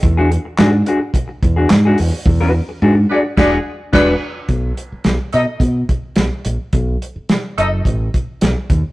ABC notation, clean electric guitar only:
X:1
M:4/4
L:1/16
Q:1/4=107
K:E
V:1 name="Clean electric guitar"
z [=DFG] z2 [DFG] z [DFG] z4 [DFG] z [DFG] z2 | z [=DFB] z2 [DFG] z [DFG] z [DFG]2 z2 [DFB]2 z2 | z16 | z16 |]